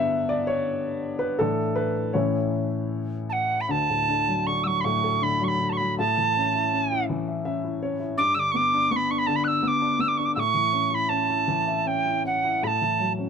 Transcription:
0.00 1.36 G2 soft
0.00 1.36 D3 soft
0.00 1.37 B3 medium
0.00 0.28 B4 medium
0.00 0.28 E5 medium
0.00 1.41 F#5 medium
0.29 0.49 D5 medium
0.47 1.16 C#5 medium
1.19 1.37 B4 medium
1.39 1.89 A2 soft
1.39 1.90 E3 soft
1.39 1.90 D4 medium
1.39 1.74 A4 medium
1.76 2.15 B4 medium
2.13 2.65 A2 medium
2.13 2.66 E3 soft
2.13 2.66 C#4 medium
2.13 3.27 E4 soft
2.13 3.25 C#5 medium
3.29 3.62 F#5 medium
3.29 3.33 A5 medium
3.60 3.67 B5 medium
3.67 5.93 D2 medium
3.67 4.48 A5 medium
3.67 3.71 B5 medium
3.89 4.83 A2 soft
4.09 4.45 D3 soft
4.28 4.64 F#3 soft
4.46 5.21 D3 medium
4.46 4.64 C#6 medium
4.63 5.40 F#3 soft
4.63 4.81 C#6 medium
4.63 4.68 E6 medium
4.80 4.85 B5 medium
4.80 5.24 C#6 medium
4.85 5.94 A2 medium
5.04 5.95 A4 soft
5.22 5.58 D3 medium
5.22 5.45 B5 medium
5.41 5.79 F#3 soft
5.41 5.49 C#6 medium
5.48 5.71 B5 medium
5.60 5.96 D3 soft
5.69 5.73 A5 medium
5.69 5.78 C#6 medium
5.77 5.98 F#3 soft
5.77 5.97 B5 medium
5.98 8.14 A2 medium
5.98 7.04 A5 medium
6.17 7.08 E3 soft
6.36 6.71 C#4 soft
6.55 6.90 E4 soft
6.73 7.44 C#4 soft
6.92 7.63 E4 soft
7.09 8.15 E3 medium
7.28 7.44 E5 soft
7.45 7.81 C#4 soft
7.45 7.79 E5 medium
7.64 7.98 E4 soft
7.82 8.17 C#4 soft
7.82 8.16 C#5 medium
8.00 8.17 E4 soft
8.17 10.31 G2 medium
8.17 8.35 D6 loud
8.34 9.26 D3 soft
8.34 8.40 E6 loud
8.39 8.52 D6 loud
8.51 8.90 B3 soft
8.51 8.57 C#6 loud
8.56 8.92 D6 loud
8.74 9.09 D4 soft
8.91 9.61 B3 soft
8.91 8.97 C#6 medium
8.96 9.12 B5 medium
9.10 9.80 D4 soft
9.10 9.20 C#6 medium
9.18 9.28 B5 medium
9.26 10.32 D3 medium
9.26 9.37 A5 medium
9.35 9.45 B5 medium
9.44 10.33 D5 soft
9.44 9.63 E6 medium
9.44 9.48 F#6 medium
9.62 9.98 B3 medium
9.62 9.68 E6 medium
9.67 10.02 D6 medium
9.81 10.17 D4 medium
9.99 10.34 B3 soft
9.99 10.09 E6 medium
10.08 10.19 D6 medium
10.17 10.35 D4 soft
10.17 10.26 C#6 medium
10.25 10.34 D6 medium
10.35 12.60 A2 medium
10.35 10.40 E6 loud
10.39 10.90 C#6 loud
10.54 11.46 E3 soft
10.73 11.08 C#4 soft
10.90 11.28 E4 soft
10.90 10.95 C#6 medium
10.94 11.10 B5 medium
11.09 11.85 C#4 soft
11.09 11.88 A5 medium
11.29 12.04 E4 soft
11.48 12.60 E3 medium
11.68 12.61 E5 soft
11.86 12.23 C#4 soft
11.86 12.25 G5 medium
12.06 12.43 E4 soft
12.25 12.62 C#4 soft
12.25 12.65 F#5 medium
12.44 12.63 E4 soft
12.63 13.29 A2 medium
12.63 12.68 B5 medium
12.67 13.12 A5 medium
12.82 13.29 E3 soft
13.00 13.29 F#3 soft
13.19 13.29 C#4 soft

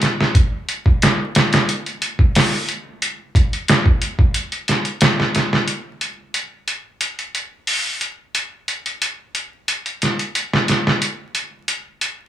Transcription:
0.02 snare soft
0.02 closed hi-hat medium
0.21 snare medium
0.35 kick loud
0.35 closed hi-hat medium
0.69 closed hi-hat medium
0.86 kick medium
1.02 snare loud
1.02 closed hi-hat loud
1.35 snare loud
1.35 closed hi-hat medium
1.53 snare loud
1.53 closed hi-hat medium
1.69 closed hi-hat medium
1.86 closed hi-hat soft
2.02 closed hi-hat medium
2.19 kick loud
2.35 snare loud
2.35 open hi-hat medium
2.69 closed hi-hat medium
3.02 closed hi-hat medium
3.35 kick loud
3.35 closed hi-hat medium
3.53 closed hi-hat soft
3.68 snare loud
3.68 closed hi-hat medium
3.86 kick medium
4.02 closed hi-hat medium
4.19 kick loud
4.34 closed hi-hat medium
4.52 closed hi-hat soft
4.68 snare soft
4.68 closed hi-hat medium
4.85 closed hi-hat soft
5.01 snare loud
5.01 closed hi-hat loud
5.20 snare medium
5.35 snare medium
5.35 closed hi-hat medium
5.53 snare medium
5.68 closed hi-hat medium
6.01 closed hi-hat medium
6.34 closed hi-hat medium
6.68 closed hi-hat medium
7.01 closed hi-hat medium
7.19 closed hi-hat soft
7.35 closed hi-hat medium
7.67 open hi-hat medium
8.01 closed hi-hat medium
8.35 closed hi-hat medium
8.68 closed hi-hat medium
8.86 closed hi-hat soft
9.02 closed hi-hat medium
9.35 closed hi-hat medium
9.68 closed hi-hat medium
9.86 closed hi-hat soft
10.02 snare soft
10.02 closed hi-hat medium
10.19 closed hi-hat soft
10.35 closed hi-hat medium
10.53 snare soft
10.68 snare soft
10.68 closed hi-hat medium
10.87 snare soft
11.02 closed hi-hat medium
11.35 closed hi-hat medium
11.68 closed hi-hat medium
12.01 closed hi-hat medium

